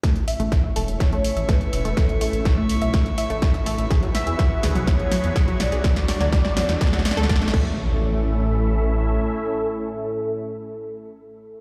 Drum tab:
CC |--------------------------------|--------------------------------|--------------------------------|----------------------------x---|
HH |x-x-o-x-x---o-x-x-x-o-x-x-x-o-x-|x-x-o-x-x---o-x-x-x-o-x-x-x-o-x-|x-x-o-x-x---o-x-x-x-o-x-x-x-o-x-|x-x-o-x-x---o-x-x-x-o-x-x-x-----|
SD |o-------o-------o-------o-------|o-------o-------o-------o-------|o---o---o---o---o---o---o---o---|o-o-o-o-o-o-o-o-oooooooooooo----|
BD |o-------o-------o-------o-------|o-------o-------o-------o-------|o-------o-------o-------o-------|o-------o-------o-------o---o---|

CC |--------------------------------|--------------------------------|
HH |--------------------------------|--------------------------------|
SD |--------------------------------|--------------------------------|
BD |--------------------------------|--------------------------------|